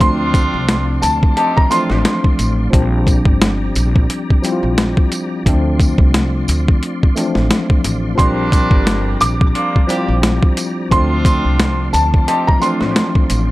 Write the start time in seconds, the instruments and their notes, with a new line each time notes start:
Already playing: tonewheel organ D5
0.00 upright bass D2, tine electric piano F3 A3 C4 D4, horn section C4 D4 F4, tonewheel organ F4 C6, upright piano C6, kick, closed hi-hat
0.34 kick, closed hi-hat, tambourine
0.54 upright bass C2
0.69 snare, closed hi-hat
1.02 upright bass D2, upright piano A5, closed hi-hat, tambourine
1.23 kick
1.37 horn section C4 D#4 G4, upright piano A5, closed hi-hat
1.57 upright piano A#5, kick
1.69 tine electric piano E3 A3 C4 D4, horn section C4 D4 F4, upright piano C6, closed hi-hat, tambourine
1.75 tine electric piano F3
1.90 upright bass A1, snare
2.05 snare, closed hi-hat
2.24 kick
2.39 upright bass A1, closed hi-hat, tambourine
2.70 upright bass A#1, tine electric piano F3 G3 C4 D4, tonewheel organ G4 A#5, kick, closed hi-hat
3.07 kick, closed hi-hat, tambourine
3.25 upright bass G1, kick
3.42 snare, closed hi-hat
3.75 upright bass A#1, closed hi-hat, tambourine
3.96 kick
4.10 closed hi-hat
4.30 kick
4.42 tine electric piano F3 G3 C4 E4, closed hi-hat, tambourine
4.52 tine electric piano F4
4.63 upright bass A#1
4.78 snare, closed hi-hat
4.97 kick
5.12 closed hi-hat, tambourine
5.45 upright bass D2, tine electric piano F3 A3 C4 D4, tonewheel organ F4 C6, kick, closed hi-hat
5.80 kick, closed hi-hat, tambourine
5.98 upright bass C2, kick
6.14 snare, closed hi-hat
6.48 upright bass D2, closed hi-hat, tambourine
6.68 kick
6.83 closed hi-hat
7.03 kick
7.14 tine electric piano E3 A3 C4 D4, closed hi-hat, tambourine
7.21 tine electric piano F3
7.35 upright bass A1, snare
7.51 snare, closed hi-hat
7.70 kick
7.84 upright bass A1, closed hi-hat, tambourine
8.15 upright bass A#1, tine electric piano F3 G3 C4 D4, horn section G3 A#3 D4, tonewheel organ G4 D5 A#5, upright piano C6, kick
8.19 closed hi-hat
8.52 kick, closed hi-hat, tambourine
8.71 upright bass G1, kick
8.87 snare, closed hi-hat
9.21 upright bass A#1, upright piano D6, closed hi-hat, tambourine
9.41 kick
9.55 horn section A#3 D4 F4, closed hi-hat
9.76 kick
9.87 tine electric piano F3 G3 C4 E4, horn section A#3 D4 G4, closed hi-hat, tambourine
9.97 tine electric piano F4
10.08 upright bass A#1
10.23 snare, closed hi-hat
10.43 kick
10.57 closed hi-hat, tambourine
10.91 upright bass D2, tine electric piano F3 A3 C4 D4, horn section C4 D4 F4, tonewheel organ F4 C6, upright piano C6, kick, closed hi-hat
11.25 kick, closed hi-hat, tambourine
11.45 upright bass C2
11.60 snare, closed hi-hat
11.93 upright bass D2, upright piano A5, closed hi-hat, tambourine
12.14 kick
12.28 horn section C4 D#4 G4, upright piano A5, closed hi-hat
12.47 upright piano A#5, kick
12.60 tine electric piano E3 A3 C4 D4, horn section C4 D4 F4, upright piano C6, closed hi-hat, tambourine
12.66 tine electric piano F3
12.81 upright bass A1, snare
12.96 snare, closed hi-hat
13.15 kick
13.30 upright bass A1, closed hi-hat, tambourine